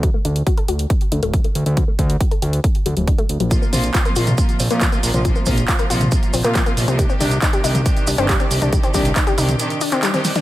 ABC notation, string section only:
X:1
M:4/4
L:1/16
Q:1/4=138
K:Bb
V:1 name="String section" clef=bass
z16 | z16 | [C,F,B,F]2 [C,F,B,F]2 [C,F,B,F] [C,F,B,F] [C,F,B,F]2 [C,F,B,F]2 z [C,F,B,F]2 [C,F,B,F] [C,F,B,F] [C,F,B,F] | [C,F,B,F]2 [C,F,B,F]2 [C,F,B,F] [C,F,B,F] [C,F,B,F]2 [C,F,B,F]2 z [C,F,B,F]2 [C,F,B,F] [C,F,B,F] [C,F,B,F] |
[C,E,DG]2 [C,E,DG]2 [C,E,DG] [C,E,DG] [C,E,DG]2 [C,E,DG]2 z [C,E,DG]2 [C,E,DG] [C,E,DG] [C,E,DG] | [C,E,DG]2 [C,E,DG]2 [C,E,DG] [C,E,DG] [C,E,DG]2 [C,E,DG]2 z [C,E,DG]2 [C,E,DG] [C,E,DG] [C,E,DG] |]